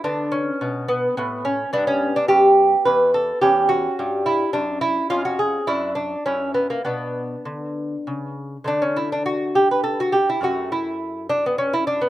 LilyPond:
<<
  \new Staff \with { instrumentName = "Lute" } { \time 3/4 \key b \minor \tempo 4 = 105 << { d'8 cis'4 b8 b8 cis'8 | d'16 cis'8 d'16 g'4 b'8 a'8 | g'8 fis'4 e'8 d'8 e'8 | eis'16 fis'16 gis'8 e'8 d'8 cis'8 b16 ais16 |
b2~ b8 r8 | \key d \major d'16 cis'16 e'16 d'16 fis'8 g'16 b'16 a'16 fis'16 g'16 e'16 | fis'8 e'4 d'16 b16 cis'16 e'16 d'16 b16 | } \\ { b2. | b2. | cis'2. | cis'4 d'4 e'4 |
d'2. | <d a>2. | <fis, a d'>2. | } >> }
  \new Staff \with { instrumentName = "Lute" } { \clef bass \time 3/4 \key b \minor d4 b,4 a,4 | g,4 fis,4 e,4 | e,4 g,4 fis,4 | eis,4 fis,4 fis,4 |
b,4 d4 cis4 | \key d \major r2. | r2. | }
>>